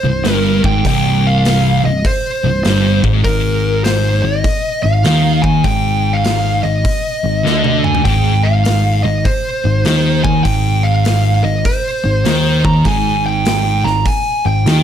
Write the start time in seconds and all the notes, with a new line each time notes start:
Already playing: C5
0.04 C1 C2
0.25 G1 G2, snare, open hi-hat
0.34 A#4
0.64 G#1 G#2 G5, kick
0.85 C1 C2 G5, kick, open hi-hat
1.27 F5
1.45 snare, open hi-hat
1.84 C1 C2 D#5
2.05 C5, kick, open hi-hat
2.44 C1 C2
2.64 G1 G2, snare, open hi-hat
3.03 G#1 G#2, kick
3.24 G#1 G#2 A#4, kick, open hi-hat
3.84 C5, snare, open hi-hat
4.22 G#1 G#2 D#5
4.44 kick, open hi-hat
4.83 G#1 G#2 F5
5.04 D#2 D#3, snare, open hi-hat
5.42 D#2 D#3 G#5, kick
5.64 G#1 G#2 G5, kick, open hi-hat
6.13 F5
6.24 snare, open hi-hat
6.63 G#1 G#2 D#5
6.85 kick, open hi-hat
7.24 G#1 G#2
7.44 D2 D3, snare
7.64 high tom
7.84 G#5, mid tom
7.95 floor tom
8.04 G#1 G#2 G5, kick, open hi-hat
8.43 F5
8.65 snare, open hi-hat
9.03 G#1 G#2 D#5
9.25 C5, kick, open hi-hat
9.65 G#1 G#2
9.85 D#2 D#3, snare, open hi-hat
10.24 D#2 D#3 G#5, kick
10.44 G#1 G#2 G5, kick, open hi-hat
10.83 F5
11.05 snare, open hi-hat
11.44 G#1 G#2 D#5
11.65 C5, kick, open hi-hat
12.04 G#1 G#2
12.25 D#2 D#3, snare, open hi-hat
12.65 D#2 D#3 A#5, kick
12.85 G#1 G#2 G#5, kick, open hi-hat
13.26 G5
13.45 snare, open hi-hat
13.84 G#1 G#2 A#5, snare
14.06 G#5, kick, open hi-hat
14.46 G#1 G#2 G5
14.66 D#2 D#3, snare, open hi-hat